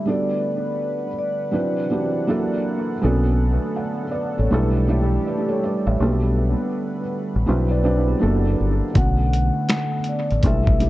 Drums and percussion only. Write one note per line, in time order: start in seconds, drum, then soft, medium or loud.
8.95 kick loud
8.95 closed hi-hat medium
9.33 closed hi-hat medium
9.69 finger snap loud
9.69 snare loud
9.69 closed hi-hat medium
10.04 closed hi-hat medium
10.31 closed hi-hat soft
10.43 kick medium
10.43 closed hi-hat medium
10.67 kick loud
10.80 closed hi-hat medium